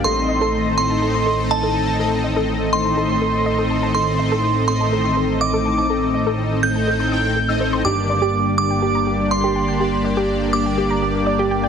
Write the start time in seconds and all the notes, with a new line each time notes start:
0.04 A1 A2 D#3 A3 C4 D#4 A4 D#5 C6
0.29 D#5
0.41 A4
0.78 A2 C4 D#4 A4 D#5 C6
0.90 A5
1.02 A4
1.14 C6
1.26 A4
1.51 D#5 A5
1.63 A4
1.75 A5
1.88 A5
1.99 A2 C4 D#4 A4 D#5
2.24 D#5
2.36 A4
2.73 A2 C4 D#4 A4 D#5 C6
2.85 A5
2.97 A4
3.10 C6
3.21 A4
3.46 D#5
3.58 A4
3.70 A5
3.83 A5
3.95 A2 C4 D#4 A4 D#5 C6
4.19 D#5
4.32 A4
4.68 A2 C4 D#4 A4 D#5 C6
4.81 A5
4.92 A4
5.05 C6
5.17 A4
5.41 D#5 D6
5.54 A4
5.65 A5
5.78 A5
5.90 A2 C4 D#4 A4 D#5
6.14 D#5
6.27 A4
6.63 A2 C4 D#4 A4 D#5 G6
6.76 A5
6.87 A4
7.00 C6
7.12 A2 C4 D#4 A4 G5 D#6
7.36 A4
7.48 A2 C4 D#4 A4 D#5 E6
7.60 C5
7.73 C6
7.85 G1 G2 D3 G3 A#3 D4 G4 D5 D6
8.09 D5
8.22 G4
8.58 G2 A#3 D4 G4 D5 D6
8.70 G5
8.82 G4
8.95 A#5
9.07 G4
9.31 D5 C6
9.44 G4
9.56 G5
9.68 G5
9.80 G2 A#3 D4 G4 D5
10.05 D5
10.17 G4
10.53 G2 A#3 D4 G4 D5 D6
10.66 G5
10.78 G4
10.90 A#5
11.02 G4
11.26 D5
11.39 G4
11.51 G5
11.64 G5